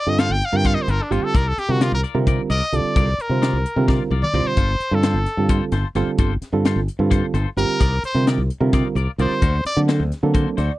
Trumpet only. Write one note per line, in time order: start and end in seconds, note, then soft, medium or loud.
0.00 0.11 D5 medium
0.09 0.21 D#5 medium
0.19 0.33 F5 loud
0.32 0.46 G5 loud
0.45 0.58 F5 medium
0.56 0.68 G5 loud
0.66 0.76 F5 loud
0.74 0.84 D#5 medium
0.82 0.92 C5 medium
0.90 1.04 A#4 medium
1.02 1.13 D4 medium
1.12 1.26 F4 medium
1.24 1.38 A4 medium
1.36 1.49 A#4 medium
1.48 1.60 A4 medium
1.59 1.72 G4 medium
1.71 1.84 F#4 medium
1.82 1.93 F4 medium
1.94 2.01 A#4 medium
2.50 2.77 D#5 medium
2.76 3.23 D5 medium
3.21 3.89 A#4 medium
4.23 4.48 D5 loud
4.47 4.96 C5 medium
4.94 5.62 A4 medium
7.58 8.01 A#4 loud
8.05 8.26 C5 medium
9.21 9.63 C5 medium
9.66 9.80 D5 loud